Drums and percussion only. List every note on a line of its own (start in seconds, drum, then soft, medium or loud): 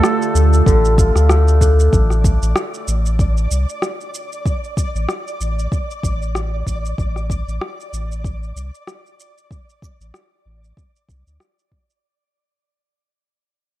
0.04 cross-stick loud
0.04 shaker soft
0.22 shaker soft
0.36 shaker medium
0.53 shaker soft
0.66 kick loud
0.66 shaker soft
0.85 shaker soft
0.98 kick loud
0.98 shaker medium
1.16 cross-stick soft
1.16 shaker soft
1.30 cross-stick medium
1.30 shaker soft
1.48 shaker soft
1.61 kick medium
1.61 shaker medium
1.80 shaker soft
1.93 kick loud
1.93 shaker soft
2.10 cross-stick soft
2.10 shaker soft
2.24 kick medium
2.24 shaker medium
2.43 shaker soft
2.56 cross-stick loud
2.56 shaker soft
2.74 shaker soft
2.88 shaker medium
3.06 shaker soft
3.19 kick loud
3.19 shaker soft
3.38 shaker soft
3.51 shaker medium
3.69 shaker soft
3.82 cross-stick medium
3.82 shaker soft
4.01 shaker soft
4.15 shaker medium
4.32 shaker soft
4.46 kick loud
4.46 shaker soft
4.64 shaker soft
4.77 kick loud
4.77 shaker medium
4.96 shaker soft
5.09 cross-stick medium
5.09 shaker soft
5.28 shaker soft
5.41 shaker medium
5.59 shaker soft
5.72 kick loud
5.72 shaker soft
5.91 shaker soft
6.03 kick loud
6.03 shaker medium
6.22 shaker soft
6.35 cross-stick medium
6.35 shaker soft
6.67 kick medium
6.67 shaker medium
6.85 shaker soft
6.98 kick loud
6.98 shaker soft
7.16 cross-stick soft
7.16 shaker soft
7.30 kick medium
7.30 shaker medium
7.49 shaker soft
7.62 cross-stick medium
7.80 shaker soft
7.94 shaker medium
8.12 shaker soft
8.24 kick loud
8.24 shaker soft
8.43 shaker soft
8.57 shaker medium
8.75 shaker soft
8.87 cross-stick medium
8.87 shaker soft
9.06 shaker soft
9.20 shaker medium
9.38 shaker soft
9.51 kick loud
9.51 shaker soft
9.70 shaker soft
9.82 kick medium
9.82 shaker medium
10.01 shaker soft
10.14 cross-stick medium
10.14 shaker soft
10.64 shaker soft
10.77 kick loud
10.77 shaker soft
10.96 shaker soft
11.09 kick loud
11.09 shaker medium
11.27 shaker soft
11.40 cross-stick medium
11.40 shaker soft
11.59 shaker soft
11.72 kick medium
11.90 shaker soft